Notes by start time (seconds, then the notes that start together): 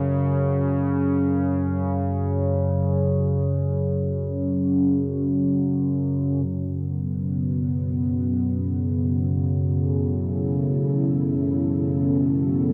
Already playing: F#2 C#3
6.47 F#2 C#3 F#3
6.80 B3
9.47 A4
9.83 E4